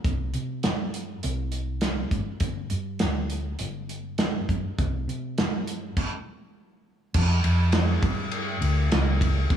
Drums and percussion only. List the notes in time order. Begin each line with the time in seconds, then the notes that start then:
0.04 kick, closed hi-hat
0.34 closed hi-hat
0.63 snare, closed hi-hat
0.94 closed hi-hat
1.23 closed hi-hat
1.52 closed hi-hat
1.81 snare, closed hi-hat
2.11 kick, closed hi-hat
2.40 kick, closed hi-hat
2.70 closed hi-hat
2.99 snare, closed hi-hat
3.30 closed hi-hat
3.59 closed hi-hat
3.89 closed hi-hat
4.18 snare, closed hi-hat
4.49 kick, closed hi-hat
4.79 kick, closed hi-hat
5.09 closed hi-hat
5.38 snare, closed hi-hat
5.67 closed hi-hat
5.97 kick, crash
7.14 kick, crash
7.44 ride
7.72 snare, ride
8.03 kick, ride
8.31 ride
8.62 ride
8.92 snare, ride
9.21 kick, ride
9.50 kick, ride